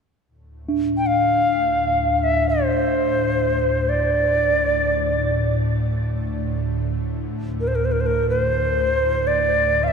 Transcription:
0, 0, Header, 1, 4, 480
1, 0, Start_track
1, 0, Key_signature, -1, "minor"
1, 0, Tempo, 500000
1, 9528, End_track
2, 0, Start_track
2, 0, Title_t, "Native American-style wooden flute"
2, 0, Program_c, 0, 77
2, 934, Note_on_c, 0, 79, 51
2, 1022, Note_on_c, 0, 77, 81
2, 1037, Note_off_c, 0, 79, 0
2, 2144, Note_on_c, 0, 76, 67
2, 2159, Note_off_c, 0, 77, 0
2, 2388, Note_off_c, 0, 76, 0
2, 2393, Note_on_c, 0, 72, 66
2, 3733, Note_on_c, 0, 74, 73
2, 3748, Note_off_c, 0, 72, 0
2, 5299, Note_off_c, 0, 74, 0
2, 7303, Note_on_c, 0, 70, 50
2, 7368, Note_on_c, 0, 72, 53
2, 7382, Note_off_c, 0, 70, 0
2, 7442, Note_on_c, 0, 70, 54
2, 7456, Note_off_c, 0, 72, 0
2, 7537, Note_on_c, 0, 72, 54
2, 7552, Note_off_c, 0, 70, 0
2, 7601, Note_on_c, 0, 70, 52
2, 7616, Note_off_c, 0, 72, 0
2, 7684, Note_on_c, 0, 72, 52
2, 7698, Note_off_c, 0, 70, 0
2, 7741, Note_on_c, 0, 70, 62
2, 7756, Note_off_c, 0, 72, 0
2, 7958, Note_off_c, 0, 70, 0
2, 7964, Note_on_c, 0, 72, 74
2, 8900, Note_on_c, 0, 74, 72
2, 8915, Note_off_c, 0, 72, 0
2, 9443, Note_on_c, 0, 77, 77
2, 9457, Note_off_c, 0, 74, 0
2, 9485, Note_on_c, 0, 76, 84
2, 9494, Note_off_c, 0, 77, 0
2, 9528, Note_off_c, 0, 76, 0
2, 9528, End_track
3, 0, Start_track
3, 0, Title_t, "Singing bowl"
3, 0, Program_c, 1, 14
3, 658, Note_on_c, 1, 62, 36
3, 8433, Note_off_c, 1, 62, 0
3, 9528, End_track
4, 0, Start_track
4, 0, Title_t, "Ambient pad"
4, 0, Program_c, 2, 92
4, 260, Note_on_c, 2, 38, 60
4, 266, Note_on_c, 2, 45, 57
4, 9528, Note_off_c, 2, 38, 0
4, 9528, Note_off_c, 2, 45, 0
4, 9528, End_track
0, 0, End_of_file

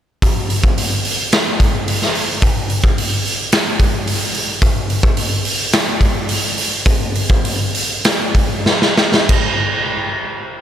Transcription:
0, 0, Header, 1, 2, 480
1, 0, Start_track
1, 0, Tempo, 549451
1, 197, Time_signature, 4, 2, 24, 8
1, 4516, Tempo, 562852
1, 5956, Tempo, 600000
1, 7396, Tempo, 644468
1, 8851, End_track
2, 0, Start_track
2, 0, Title_t, "Drums"
2, 195, Note_on_c, 9, 36, 81
2, 196, Note_on_c, 9, 46, 60
2, 282, Note_off_c, 9, 36, 0
2, 283, Note_off_c, 9, 46, 0
2, 436, Note_on_c, 9, 46, 53
2, 523, Note_off_c, 9, 46, 0
2, 555, Note_on_c, 9, 36, 77
2, 642, Note_off_c, 9, 36, 0
2, 679, Note_on_c, 9, 46, 74
2, 767, Note_off_c, 9, 46, 0
2, 916, Note_on_c, 9, 46, 58
2, 1003, Note_off_c, 9, 46, 0
2, 1155, Note_on_c, 9, 46, 61
2, 1161, Note_on_c, 9, 38, 92
2, 1242, Note_off_c, 9, 46, 0
2, 1249, Note_off_c, 9, 38, 0
2, 1398, Note_on_c, 9, 36, 80
2, 1399, Note_on_c, 9, 46, 51
2, 1485, Note_off_c, 9, 36, 0
2, 1487, Note_off_c, 9, 46, 0
2, 1641, Note_on_c, 9, 46, 74
2, 1728, Note_off_c, 9, 46, 0
2, 1765, Note_on_c, 9, 38, 31
2, 1852, Note_off_c, 9, 38, 0
2, 1880, Note_on_c, 9, 46, 52
2, 1967, Note_off_c, 9, 46, 0
2, 2116, Note_on_c, 9, 36, 90
2, 2116, Note_on_c, 9, 46, 62
2, 2203, Note_off_c, 9, 46, 0
2, 2204, Note_off_c, 9, 36, 0
2, 2356, Note_on_c, 9, 46, 58
2, 2443, Note_off_c, 9, 46, 0
2, 2477, Note_on_c, 9, 36, 78
2, 2565, Note_off_c, 9, 36, 0
2, 2604, Note_on_c, 9, 46, 73
2, 2691, Note_off_c, 9, 46, 0
2, 2843, Note_on_c, 9, 46, 51
2, 2930, Note_off_c, 9, 46, 0
2, 3077, Note_on_c, 9, 46, 69
2, 3083, Note_on_c, 9, 38, 97
2, 3164, Note_off_c, 9, 46, 0
2, 3170, Note_off_c, 9, 38, 0
2, 3317, Note_on_c, 9, 36, 80
2, 3321, Note_on_c, 9, 46, 52
2, 3404, Note_off_c, 9, 36, 0
2, 3408, Note_off_c, 9, 46, 0
2, 3559, Note_on_c, 9, 46, 73
2, 3647, Note_off_c, 9, 46, 0
2, 3795, Note_on_c, 9, 46, 46
2, 3882, Note_off_c, 9, 46, 0
2, 4035, Note_on_c, 9, 36, 97
2, 4035, Note_on_c, 9, 46, 53
2, 4122, Note_off_c, 9, 46, 0
2, 4123, Note_off_c, 9, 36, 0
2, 4279, Note_on_c, 9, 46, 53
2, 4366, Note_off_c, 9, 46, 0
2, 4397, Note_on_c, 9, 36, 87
2, 4484, Note_off_c, 9, 36, 0
2, 4516, Note_on_c, 9, 46, 77
2, 4601, Note_off_c, 9, 46, 0
2, 4756, Note_on_c, 9, 46, 61
2, 4841, Note_off_c, 9, 46, 0
2, 4993, Note_on_c, 9, 46, 75
2, 4999, Note_on_c, 9, 38, 101
2, 5078, Note_off_c, 9, 46, 0
2, 5084, Note_off_c, 9, 38, 0
2, 5230, Note_on_c, 9, 36, 70
2, 5234, Note_on_c, 9, 46, 48
2, 5316, Note_off_c, 9, 36, 0
2, 5319, Note_off_c, 9, 46, 0
2, 5470, Note_on_c, 9, 46, 80
2, 5555, Note_off_c, 9, 46, 0
2, 5717, Note_on_c, 9, 46, 54
2, 5802, Note_off_c, 9, 46, 0
2, 5957, Note_on_c, 9, 36, 91
2, 5959, Note_on_c, 9, 46, 69
2, 6037, Note_off_c, 9, 36, 0
2, 6039, Note_off_c, 9, 46, 0
2, 6193, Note_on_c, 9, 46, 62
2, 6273, Note_off_c, 9, 46, 0
2, 6307, Note_on_c, 9, 36, 79
2, 6387, Note_off_c, 9, 36, 0
2, 6428, Note_on_c, 9, 46, 78
2, 6508, Note_off_c, 9, 46, 0
2, 6667, Note_on_c, 9, 46, 58
2, 6747, Note_off_c, 9, 46, 0
2, 6905, Note_on_c, 9, 46, 68
2, 6911, Note_on_c, 9, 38, 96
2, 6985, Note_off_c, 9, 46, 0
2, 6991, Note_off_c, 9, 38, 0
2, 7147, Note_on_c, 9, 46, 47
2, 7148, Note_on_c, 9, 36, 68
2, 7227, Note_off_c, 9, 46, 0
2, 7228, Note_off_c, 9, 36, 0
2, 7398, Note_on_c, 9, 38, 62
2, 7473, Note_off_c, 9, 38, 0
2, 7516, Note_on_c, 9, 38, 59
2, 7590, Note_off_c, 9, 38, 0
2, 7632, Note_on_c, 9, 38, 79
2, 7706, Note_off_c, 9, 38, 0
2, 7754, Note_on_c, 9, 38, 90
2, 7828, Note_off_c, 9, 38, 0
2, 7867, Note_on_c, 9, 49, 76
2, 7869, Note_on_c, 9, 36, 97
2, 7941, Note_off_c, 9, 49, 0
2, 7943, Note_off_c, 9, 36, 0
2, 8851, End_track
0, 0, End_of_file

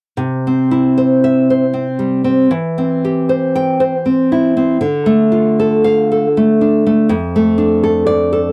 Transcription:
0, 0, Header, 1, 2, 480
1, 0, Start_track
1, 0, Key_signature, 0, "major"
1, 0, Tempo, 805369
1, 111, Time_signature, 3, 2, 24, 8
1, 587, Tempo, 770218
1, 3947, Tempo, 738007
1, 5342, End_track
2, 0, Start_track
2, 0, Title_t, "Nylon-string guitar"
2, 0, Program_c, 0, 24
2, 102, Note_on_c, 0, 48, 55
2, 280, Note_on_c, 0, 60, 35
2, 425, Note_on_c, 0, 64, 41
2, 581, Note_on_c, 0, 72, 47
2, 746, Note_on_c, 0, 76, 53
2, 902, Note_off_c, 0, 72, 0
2, 910, Note_on_c, 0, 72, 47
2, 986, Note_off_c, 0, 60, 0
2, 997, Note_off_c, 0, 76, 0
2, 1054, Note_on_c, 0, 60, 38
2, 1135, Note_off_c, 0, 64, 0
2, 1213, Note_on_c, 0, 55, 39
2, 1364, Note_off_c, 0, 60, 0
2, 1372, Note_on_c, 0, 60, 45
2, 1509, Note_off_c, 0, 48, 0
2, 1536, Note_off_c, 0, 60, 0
2, 1536, Note_on_c, 0, 52, 53
2, 1537, Note_off_c, 0, 55, 0
2, 1542, Note_off_c, 0, 72, 0
2, 1705, Note_on_c, 0, 60, 38
2, 1871, Note_on_c, 0, 67, 45
2, 2025, Note_on_c, 0, 72, 44
2, 2189, Note_on_c, 0, 79, 56
2, 2335, Note_off_c, 0, 72, 0
2, 2342, Note_on_c, 0, 72, 46
2, 2424, Note_off_c, 0, 60, 0
2, 2442, Note_off_c, 0, 79, 0
2, 2501, Note_on_c, 0, 60, 40
2, 2587, Note_off_c, 0, 67, 0
2, 2665, Note_on_c, 0, 64, 42
2, 2812, Note_off_c, 0, 60, 0
2, 2820, Note_on_c, 0, 60, 45
2, 2954, Note_off_c, 0, 52, 0
2, 2967, Note_off_c, 0, 60, 0
2, 2969, Note_on_c, 0, 50, 57
2, 2981, Note_off_c, 0, 72, 0
2, 2982, Note_off_c, 0, 64, 0
2, 3127, Note_on_c, 0, 57, 46
2, 3288, Note_on_c, 0, 65, 40
2, 3460, Note_on_c, 0, 69, 46
2, 3616, Note_on_c, 0, 77, 61
2, 3777, Note_off_c, 0, 69, 0
2, 3785, Note_on_c, 0, 69, 50
2, 3862, Note_off_c, 0, 57, 0
2, 3880, Note_off_c, 0, 77, 0
2, 3944, Note_on_c, 0, 57, 45
2, 4024, Note_off_c, 0, 65, 0
2, 4100, Note_on_c, 0, 62, 44
2, 4257, Note_off_c, 0, 57, 0
2, 4265, Note_on_c, 0, 57, 48
2, 4400, Note_off_c, 0, 50, 0
2, 4413, Note_on_c, 0, 41, 66
2, 4426, Note_off_c, 0, 62, 0
2, 4428, Note_off_c, 0, 57, 0
2, 4430, Note_off_c, 0, 69, 0
2, 4585, Note_on_c, 0, 57, 44
2, 4729, Note_on_c, 0, 62, 44
2, 4896, Note_on_c, 0, 69, 51
2, 5043, Note_off_c, 0, 69, 0
2, 5046, Note_on_c, 0, 74, 62
2, 5215, Note_on_c, 0, 69, 52
2, 5306, Note_off_c, 0, 57, 0
2, 5314, Note_off_c, 0, 74, 0
2, 5342, Note_off_c, 0, 41, 0
2, 5342, Note_off_c, 0, 62, 0
2, 5342, Note_off_c, 0, 69, 0
2, 5342, End_track
0, 0, End_of_file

